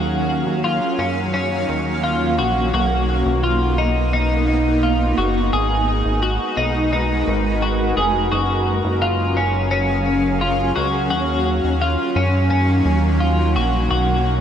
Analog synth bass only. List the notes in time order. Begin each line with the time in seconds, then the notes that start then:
Already playing: D#2
0.46 D#2
0.99 F#2
1.69 D#2
2.39 A#1
2.74 B1
3.26 B1
5.18 F#1
5.54 G#1
6.06 G#1
6.57 B1
7.28 G#1
7.97 F1
8.32 F#1
8.85 F#1
10.77 C#2
11.11 D#2
11.64 D#2
12.16 F#2
12.85 D#2
13.56 A#1
13.91 B1